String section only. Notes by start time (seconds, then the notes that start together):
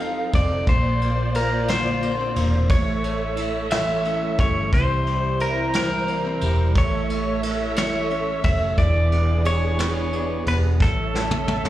Already playing: F3 C4 D#4 A4
0.67 A#3 F4 C5 D5
2.71 A3 A4 C#5 E5
4.73 C3 G3 E4 C5
6.75 A3 A4 C#5 E5
8.78 E3 B3 D4 G#4
10.81 A3 A4 C#5 E5